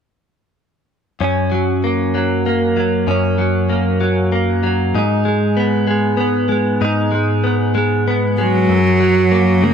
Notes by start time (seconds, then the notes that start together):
1.20 F#2 C#4
1.52 F#3
1.84 A#3
2.15 F#3
2.46 A#3
2.77 F#3
3.07 F#2 C#4
3.38 F#3
3.70 A#3
4.01 F#3
4.32 A#3
4.63 F#3
4.95 G#2 D#4
5.25 G#3
5.57 B3
5.87 G#3
6.17 B3
6.49 G#3
6.81 G#2 D#4
7.12 G#3
7.44 B3
7.75 G#3
8.08 B3
8.38 F#3 G#3
8.69 F#2
9.00 F#3
9.32 A#3
9.62 C#3 A#3